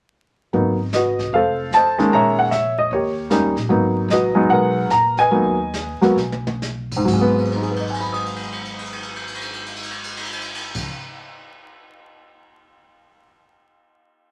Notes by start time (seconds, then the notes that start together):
0.53 G#1 F#3 A#3 B3 D#4, brush sweep, kick
0.93 F#4 B4 D#5, snare, hi-hat pedal
1.19 kick, snare
1.33 F1 A4 C5 F5, brush sweep, kick
1.71 F2 A5, snare, hi-hat pedal
1.76 C5 D#5
1.98 D#3 G#3 A#3 C#4, snare
2.12 A#1 C#5 E5 A#5, brush sweep, kick
2.39 F#5
2.51 E5, snare, hi-hat pedal
2.79 D#5
2.91 D#2 G4 A#4 C#5, brush sweep, kick
3.30 G3 A#3 C#4 D#4, snare, hi-hat pedal
3.56 A#1, snare
3.69 G#1 F#3 A#3 B3 D#4, brush sweep, kick
4.08 A1 D#5, snare, hi-hat pedal
4.12 F#4 B4
4.35 F#3 G#3 B3 D#4
4.49 B1 A#4 B4 F#5, brush sweep, kick
4.90 A#1 A#5, snare, hi-hat pedal
5.17 B4 D#5 G#5, snare
5.31 D#2 F#3 A#3 B3 D#4, brush sweep, kick
5.73 snare, hi-hat pedal
6.01 F#3 A#3 B3 F#4, muted upright bass stroke, snare
6.16 B1, snare
6.32 high tom
6.47 high tom
6.62 snare, hi-hat pedal
6.91 kick, crash
6.96 G#2
7.05 G#1 F#3, kick, crash
7.13 G#3
7.21 B3
7.38 crash
7.45 ride
7.52 crash
7.56 D#4
7.62 G#4, ride
7.71 B4
7.76 crash
7.80 D#5
7.87 G#5, ride
7.94 crash
8.01 B5, ride
8.13 D#6, crash
8.26 ride
8.36 crash
8.43 ride
8.52 crash
8.65 ride
8.79 crash
8.86 ride
8.92 crash
9.03 ride
9.16 crash
9.27 ride
9.34 crash
9.41 ride
9.53 crash
9.66 ride
9.76 crash
9.83 ride
9.91 crash
10.04 ride
10.17 crash
10.25 ride
10.32 crash
10.41 ride
10.55 crash
10.74 kick, crash